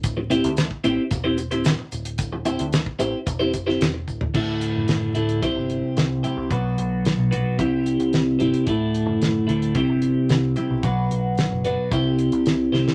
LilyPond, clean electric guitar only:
\new Staff \with { instrumentName = "Clean electric guitar" } { \time 4/4 \key c \lydian \tempo 4 = 111 r8 <c' e' g' c''>16 r8. <c' e' g' c''>16 r8 <c' e' g' c''>16 r16 <c' e' g' c''>16 r4 | r8 <c' e' g' c''>16 r8. <c' e' g' c''>16 r8 <c' e' g' c''>16 r16 <c' e' g' c''>16 r4 | <d, a, d a e'>4. <d, a, d a e'>8 <c g c' e' g' c''>4. <c g c' e' g' c''>8 | <b, fis b d' fis' b'>4. <b, fis b d' fis' b'>8 <c g c' e' g' c''>4. <c g c' e' g' c''>8 |
<d, a, d a e'>4. <d, a, d a e'>8 <c g c' e' g' c''>4. <c g c' e' g' c''>8 | <b, fis b d' fis' b'>4. <b, fis b d' fis' b'>8 <c g c' e' g' c''>4. <c g c' e' g' c''>8 | }